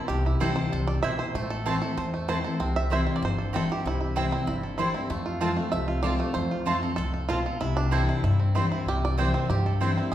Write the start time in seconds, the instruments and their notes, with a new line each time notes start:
Already playing: five-string banjo E4
0.08 upright bass C2, steel-string acoustic guitar C3, five-string banjo G4
0.26 five-string banjo E4
0.40 upright bass D2, steel-string acoustic guitar E3 G3 C4 E4, mandolin C4 E4 C5 G5, five-string banjo A4
0.56 five-string banjo C5
0.72 upright bass C2, steel-string acoustic guitar C3, five-string banjo A4
0.87 five-string banjo D5
1.03 upright bass B1, steel-string acoustic guitar B2, mandolin C4 E4 C5 G5, five-string banjo E5
1.19 five-string banjo C5
1.34 upright bass A1, steel-string acoustic guitar A2, five-string banjo A3
1.50 five-string banjo A4
1.66 steel-string acoustic guitar E3 A3 C4 E4, five-string banjo A3, mandolin C4 E4 C5 A5
1.81 steel-string acoustic guitar C4 E4, five-string banjo A4
1.97 upright bass E2, steel-string acoustic guitar E2, five-string banjo C5
2.14 five-string banjo A3
2.28 steel-string acoustic guitar E3 A3 C4 E4, mandolin C4 E4 C5 A5, five-string banjo C5
2.44 steel-string acoustic guitar C4 E4, five-string banjo A4
2.60 upright bass C2, steel-string acoustic guitar C3, five-string banjo C4
2.76 five-string banjo E5
2.90 steel-string acoustic guitar E3 G3 C4 E4, mandolin C4 E4 C5 G5, five-string banjo E5
3.07 five-string banjo C4
3.16 five-string banjo D5
3.22 upright bass G1, steel-string acoustic guitar G2, five-string banjo C5
3.38 five-string banjo A4
3.53 steel-string acoustic guitar E3 G3 C4 E4, mandolin C4 E4 C5 G5, five-string banjo A4
3.69 steel-string acoustic guitar C4 E4, five-string banjo G4
3.85 upright bass C2, steel-string acoustic guitar C3, five-string banjo E4
4.01 five-string banjo E4
4.16 steel-string acoustic guitar E3 G3 C4 E4, mandolin C4 E4 C5 G5, five-string banjo E4
4.31 five-string banjo C4, steel-string acoustic guitar C4 E4
4.47 upright bass G1, steel-string acoustic guitar G2, five-string banjo E4
4.63 five-string banjo A4
4.78 steel-string acoustic guitar E3 G3 C4 E4, mandolin C4 E4 C5 G5, five-string banjo E4
4.94 five-string banjo C4, steel-string acoustic guitar C4 E4
5.10 steel-string acoustic guitar F2, upright bass F2, five-string banjo A3
5.26 five-string banjo F4
5.41 steel-string acoustic guitar F3 A3 C4 F4, mandolin C4 F4 C5 A5, five-string banjo F4
5.57 five-string banjo A3, steel-string acoustic guitar C4 F4
5.72 upright bass C2, steel-string acoustic guitar C3, five-string banjo E5
5.88 five-string banjo F4
6.03 steel-string acoustic guitar F3 A3 C4 F4, mandolin C4 F4 C5 A5, five-string banjo D5
6.19 five-string banjo A3, steel-string acoustic guitar C4 F4
6.34 steel-string acoustic guitar F2, upright bass F2, five-string banjo C5
6.51 five-string banjo F4
6.65 steel-string acoustic guitar F3 A3 C4 F4, five-string banjo A3, mandolin C4 F4 C5 A5
6.82 steel-string acoustic guitar C4 F4, five-string banjo A4
6.96 upright bass C2, steel-string acoustic guitar A2, five-string banjo A4
7.14 five-string banjo A4
7.29 steel-string acoustic guitar B2, mandolin C4 F4 C5 A5, five-string banjo F4
7.46 five-string banjo A4
7.61 upright bass C2, steel-string acoustic guitar C3, five-string banjo E4
7.77 five-string banjo D4
7.91 steel-string acoustic guitar E3 G3 C4 E4, mandolin C4 E4 C5 G5, five-string banjo A4
8.09 five-string banjo E4
8.23 upright bass G2, steel-string acoustic guitar G2, five-string banjo E4
8.40 five-string banjo C4
8.55 steel-string acoustic guitar E3 G3 C4 E4, mandolin C4 E4 C5 G5, five-string banjo E4
8.72 five-string banjo E4
8.86 upright bass C2, steel-string acoustic guitar C3, five-string banjo G4
9.05 five-string banjo D5
9.18 steel-string acoustic guitar E3 G3 C4 E4, mandolin C4 E4 C5 G5, five-string banjo C5
9.34 five-string banjo C4
9.49 upright bass G2, steel-string acoustic guitar G2, five-string banjo G4
9.66 five-string banjo A4
9.81 steel-string acoustic guitar E3 G3 C4 E4, mandolin C4 E4 C5 G5, five-string banjo E4
9.97 five-string banjo C4, steel-string acoustic guitar C4 E4